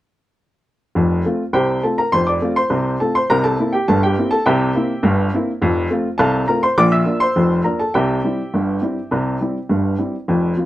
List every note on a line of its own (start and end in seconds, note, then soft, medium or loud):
0.95 1.21 F1 medium
0.95 1.21 F2 medium
1.25 1.42 A3 soft
1.25 1.42 C4 soft
1.25 1.42 F4 soft
1.53 1.79 C2 medium
1.53 1.79 C3 medium
1.53 1.82 G4 medium
1.53 1.82 C5 medium
1.53 1.82 G5 medium
1.83 2.00 A3 soft
1.83 2.00 C4 soft
1.83 2.01 F4 soft
1.83 1.98 A4 soft
1.83 1.98 A5 medium
1.98 2.13 A#4 soft
1.98 2.13 A#5 medium
2.12 2.38 F1 medium
2.12 2.38 F2 medium
2.12 2.27 C5 medium
2.12 2.27 C6 medium
2.27 2.55 D5 medium
2.27 2.50 D6 medium
2.42 2.58 A3 soft
2.42 2.58 C4 soft
2.42 2.59 F4 soft
2.56 2.97 C5 medium
2.56 2.98 C6 medium
2.70 2.95 C2 medium
2.70 2.96 C3 medium
3.00 3.17 A3 soft
3.00 3.17 C4 soft
3.00 3.17 F4 soft
3.00 3.15 A4 medium
3.00 3.15 A5 medium
3.15 3.29 C5 medium
3.15 3.30 C6 medium
3.30 3.55 C2 medium
3.30 3.55 C3 medium
3.30 3.44 A#4 medium
3.30 3.44 A#5 medium
3.44 3.71 A4 medium
3.44 3.71 A5 medium
3.59 3.75 A#3 soft
3.59 3.75 C4 soft
3.59 3.76 E4 soft
3.73 3.87 G4 medium
3.73 3.87 G5 medium
3.88 4.13 G1 medium
3.88 4.13 G2 medium
3.88 4.02 A4 medium
3.88 4.02 A5 medium
4.03 4.30 G4 medium
4.03 4.30 G5 medium
4.18 4.34 A#3 soft
4.18 4.34 C4 soft
4.18 4.34 E4 soft
4.31 4.45 A4 medium
4.31 4.45 A5 medium
4.46 4.71 C2 medium
4.46 4.70 C3 medium
4.46 5.29 G4 medium
4.46 5.29 E5 medium
4.46 5.28 G5 medium
4.75 4.91 A#3 medium
4.75 4.91 C4 medium
4.75 4.91 E4 medium
5.03 5.28 G1 medium
5.03 5.28 G2 medium
5.34 5.50 A#3 soft
5.34 5.50 C4 soft
5.34 5.50 E4 medium
5.62 5.86 F1 medium
5.62 5.86 F2 medium
5.90 6.06 A3 medium
5.90 6.07 C4 medium
5.90 6.07 F4 medium
6.18 6.44 C2 medium
6.18 6.44 C3 medium
6.18 6.46 A4 medium
6.18 6.46 F5 medium
6.18 6.41 A5 medium
6.48 6.64 A3 soft
6.48 6.65 C4 soft
6.48 6.65 F4 soft
6.48 6.62 A#4 medium
6.48 6.62 A#5 medium
6.63 6.77 C5 medium
6.63 6.77 C6 medium
6.78 7.02 A#1 medium
6.78 7.02 A#2 medium
6.78 6.91 D5 medium
6.78 6.92 D6 loud
6.92 7.19 E5 medium
6.92 7.15 E6 medium
7.06 7.22 A#3 medium
7.06 7.22 D4 soft
7.06 7.23 F4 soft
7.20 7.62 C5 medium
7.20 7.62 C6 medium
7.36 7.60 F1 medium
7.36 7.60 F2 medium
7.64 7.80 A#3 soft
7.64 7.81 D4 soft
7.64 7.81 F4 soft
7.64 7.78 A#4 soft
7.64 7.79 A#5 medium
7.79 7.93 A4 medium
7.79 7.94 A5 medium
7.94 8.19 C2 medium
7.94 8.19 C3 medium
7.94 9.95 G4 medium
7.94 9.95 E5 medium
7.94 9.58 G5 medium
8.24 8.40 G3 soft
8.24 8.40 C4 soft
8.24 8.40 E4 soft
8.54 8.78 G1 medium
8.54 8.78 G2 medium
8.82 8.98 G3 soft
8.82 8.98 C4 soft
8.82 8.99 E4 soft
9.11 9.36 C2 medium
9.11 9.36 C3 medium
9.41 9.57 G3 soft
9.41 9.57 C4 soft
9.41 9.57 E4 soft
9.69 9.94 G1 medium
9.69 9.94 G2 medium
9.98 10.14 G3 soft
9.98 10.14 C4 soft
9.98 10.15 E4 soft
10.28 10.53 F1 medium
10.28 10.53 F2 medium
10.57 10.66 F3 soft
10.57 10.66 C4 soft
10.57 10.66 F4 soft